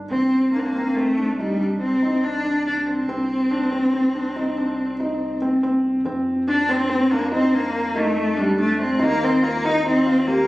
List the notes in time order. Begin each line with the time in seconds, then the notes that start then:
0.10 C2 C4
0.52 A#3 D4
0.58 C4
0.66 A#3
0.76 C4
0.94 A3 C4
1.17 D4
1.38 G3 D#4
1.60 D4
1.81 C4
2.02 D#4
2.24 D4
2.46 D4
2.66 D4
2.87 C4
3.07 C2 C4
3.51 D4
3.72 C4
3.93 C4
4.15 D4
4.36 D#4
4.57 D4
5.00 D#4
5.42 C4
5.63 C4
6.04 F2 C4
6.48 D4
6.69 C4
6.90 C4
7.11 A#3 D4
7.32 C4 D#4
7.53 A#3 D4
7.95 A3 D#4
8.37 G3 D4
8.58 A3 D4
8.82 C4
8.99 D#2 A#3 D#4
9.23 C4
9.42 A#3 F4
9.64 D#4
9.86 C4 D#4
10.06 F4
10.26 A#3 G4